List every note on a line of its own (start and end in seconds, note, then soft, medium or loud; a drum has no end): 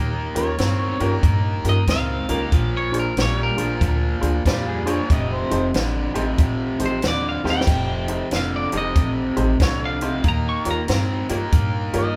0.00 0.28 D#2 medium
0.00 0.54 D#3 medium
0.00 0.54 A#3 medium
0.00 0.99 D#5 medium
0.35 0.55 D#2 medium
0.35 0.47 C#4 medium
0.35 0.47 F4 medium
0.35 0.47 G4 medium
0.35 0.47 A#4 medium
0.35 0.79 C#5 medium
0.35 closed hi-hat medium
0.58 0.93 G2 medium
0.58 0.96 D#3 medium
0.58 0.96 C4 medium
0.58 snare medium
0.58 closed hi-hat medium
0.79 1.14 C#5 medium
1.00 1.19 G2 medium
1.00 1.21 D#3 medium
1.00 1.21 A#3 medium
1.00 1.12 C#4 medium
1.00 1.12 F4 medium
1.00 1.12 G4 medium
1.00 1.12 A#4 medium
1.00 closed hi-hat medium
1.23 1.57 G2 medium
1.23 1.83 D#3 medium
1.23 1.83 A#3 medium
1.23 kick medium
1.23 closed hi-hat medium
1.64 1.84 G2 medium
1.64 1.76 C#4 medium
1.64 1.76 F4 medium
1.64 1.76 G4 medium
1.64 1.77 A#4 medium
1.64 closed hi-hat medium
1.69 1.89 D#5 medium
1.87 2.21 C#2 medium
1.87 2.25 D#3 medium
1.87 2.25 C4 medium
1.87 2.73 F5 medium
1.87 kick medium
1.87 snare loud
1.87 closed hi-hat medium
2.29 2.48 C#2 medium
2.29 2.50 D#3 medium
2.29 2.50 A#3 medium
2.29 2.40 C#4 medium
2.29 2.41 F4 medium
2.29 2.41 G4 medium
2.29 2.41 A#4 medium
2.29 closed hi-hat medium
2.52 3.05 A#1 medium
2.52 3.12 A#2 medium
2.52 3.13 F3 medium
2.52 kick medium
2.52 closed hi-hat medium
2.77 2.96 C#5 medium
2.92 3.04 D4 medium
2.92 3.04 F4 medium
2.92 3.05 G#4 medium
2.92 3.05 C5 medium
2.92 closed hi-hat medium
2.99 3.18 A#4 medium
3.17 3.50 A#1 medium
3.17 3.54 A#2 medium
3.17 3.55 G3 medium
3.17 snare loud
3.17 closed hi-hat medium
3.22 3.40 C#5 medium
3.43 4.66 A#4 medium
3.56 3.77 A#1 medium
3.56 3.79 A#2 medium
3.56 3.79 F3 medium
3.56 3.69 D4 medium
3.56 3.69 F4 medium
3.56 3.69 G#4 medium
3.56 3.69 C5 medium
3.56 closed hi-hat medium
3.81 4.15 D2 medium
3.81 4.41 A#2 medium
3.81 4.42 F3 medium
3.81 kick medium
3.81 closed hi-hat medium
4.20 4.41 D2 medium
4.20 4.33 D4 medium
4.20 4.33 F4 medium
4.20 4.33 G#4 medium
4.20 4.33 C5 medium
4.20 closed hi-hat soft
4.45 4.98 F2 medium
4.45 4.83 A#2 medium
4.45 4.83 G3 medium
4.45 4.55 C4 medium
4.45 4.55 D4 medium
4.45 4.71 F4 loud
4.45 kick medium
4.45 snare loud
4.45 closed hi-hat medium
4.70 4.88 G#4 medium
4.86 5.08 A#2 medium
4.86 5.08 F3 medium
4.86 4.98 D4 medium
4.86 4.98 F4 medium
4.86 4.98 G#4 medium
4.86 4.98 C5 medium
4.86 5.09 C#5 medium
4.86 closed hi-hat medium
5.10 5.44 F1 medium
5.10 5.70 F2 medium
5.10 5.70 C3 medium
5.10 5.35 D#5 medium
5.10 kick medium
5.10 closed hi-hat medium
5.34 5.67 C5 medium
5.51 5.70 F1 medium
5.51 5.62 D#4 medium
5.51 5.63 G4 medium
5.51 5.63 A4 medium
5.51 5.63 C5 medium
5.51 closed hi-hat medium
5.74 6.08 A1 medium
5.74 6.11 F2 medium
5.74 6.12 D3 medium
5.74 snare loud
5.74 closed hi-hat medium
6.14 6.34 A1 medium
6.14 6.36 F2 medium
6.14 6.36 C3 medium
6.14 6.26 D#4 medium
6.14 6.26 G4 medium
6.14 6.27 A4 medium
6.14 6.27 C5 medium
6.14 closed hi-hat medium
6.38 6.73 A1 medium
6.38 6.98 F2 medium
6.38 6.98 C3 medium
6.38 kick loud
6.38 closed hi-hat medium
6.79 6.99 A1 medium
6.79 6.91 D#4 medium
6.79 6.91 G4 medium
6.79 6.92 A4 medium
6.79 6.92 C5 medium
6.79 closed hi-hat medium
6.86 7.04 C5 medium
7.02 7.37 D#2 medium
7.02 7.40 F2 medium
7.02 7.40 D3 medium
7.02 snare loud
7.02 closed hi-hat medium
7.08 7.26 D5 medium
7.29 7.47 F5 medium
7.44 7.63 D#2 medium
7.44 7.65 F2 medium
7.44 7.65 C3 medium
7.44 7.56 D#4 medium
7.44 7.56 G4 medium
7.44 7.56 A4 medium
7.44 7.56 C5 medium
7.44 snare soft
7.50 8.31 G5 medium
7.61 snare medium
7.67 8.20 F1 medium
7.67 8.27 F2 medium
7.67 8.27 C3 medium
7.67 kick medium
7.67 closed hi-hat medium
7.67 crash medium
8.08 8.20 D#4 medium
8.08 8.20 G4 medium
8.08 8.20 A4 medium
8.08 8.21 C5 medium
8.08 closed hi-hat medium
8.31 8.66 F1 medium
8.31 8.69 F2 medium
8.31 8.69 D3 medium
8.31 snare medium
8.31 closed hi-hat medium
8.36 8.55 F5 medium
8.56 8.75 D5 medium
8.72 8.92 F1 medium
8.72 8.94 F2 medium
8.72 8.94 C3 medium
8.72 8.84 D#4 medium
8.72 8.84 G4 medium
8.72 8.85 A4 medium
8.72 8.85 C5 medium
8.72 closed hi-hat soft
8.78 9.10 D#5 medium
8.96 9.30 A1 medium
8.96 9.56 F2 medium
8.96 9.56 C3 medium
8.96 kick medium
8.96 closed hi-hat medium
9.36 9.56 A1 medium
9.36 9.48 D#4 medium
9.36 9.48 G4 medium
9.36 9.49 A4 medium
9.36 9.49 C5 medium
9.36 closed hi-hat medium
9.60 10.13 C2 medium
9.60 9.97 F2 medium
9.60 9.98 D3 medium
9.60 9.83 C#5 medium
9.60 kick medium
9.60 snare loud
9.60 closed hi-hat medium
9.85 10.25 F5 medium
10.01 10.22 F2 medium
10.01 10.23 C3 medium
10.01 10.13 D#4 medium
10.01 10.13 G4 medium
10.01 10.13 A4 medium
10.01 10.14 C5 medium
10.01 closed hi-hat medium
10.24 10.58 D#2 medium
10.24 10.84 D#3 medium
10.24 10.84 A#3 medium
10.24 kick medium
10.24 closed hi-hat medium
10.28 10.48 A#5 medium
10.49 10.68 C#6 medium
10.65 10.85 D#2 medium
10.65 10.77 F4 medium
10.65 10.77 G4 medium
10.65 10.78 A#4 medium
10.65 10.78 C#5 medium
10.65 closed hi-hat medium
10.71 12.16 A#5 medium
10.88 11.23 G2 medium
10.88 11.26 D#3 medium
10.88 11.26 C4 medium
10.88 snare loud
10.88 closed hi-hat medium
11.29 11.49 G2 medium
11.29 11.51 D#3 medium
11.29 11.51 A#3 medium
11.29 11.42 F4 medium
11.29 11.42 G4 medium
11.29 11.42 A#4 medium
11.29 11.42 C#5 medium
11.29 closed hi-hat medium
11.52 11.87 G2 medium
11.52 12.13 D#3 medium
11.52 12.13 A#3 medium
11.52 kick medium
11.52 closed hi-hat medium
11.93 12.14 G2 medium
11.93 12.06 F4 medium
11.93 12.06 G4 medium
11.93 12.06 A#4 medium
11.93 12.06 C#5 medium
11.93 closed hi-hat medium
11.98 12.16 D#5 loud